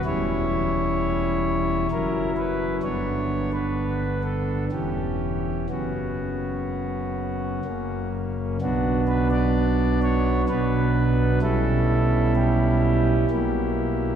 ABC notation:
X:1
M:3/4
L:1/16
Q:1/4=64
K:Bm
V:1 name="Pipe organ"
c8 ^A2 B2 | c3 B3 A2 G4 | F8- F2 z2 | F2 B d3 c2 B4 |
A4 G8 |]
V:2 name="Pipe organ" clef=bass
[E,,,E,,G,CE]8 [F,,,F,,F,CE]4 | [G,,,G,,D,B,D]8 [E,,,E,,E,C]4 | [F,,,F,,C,B,C]8 [F,,,F,,C,^A,C]4 | [B,,,B,,F,B,D]8 [B,,,B,,F,B,D]4 |
[B,,,B,,G,CE]8 [B,,,B,,F,^A,E]4 |]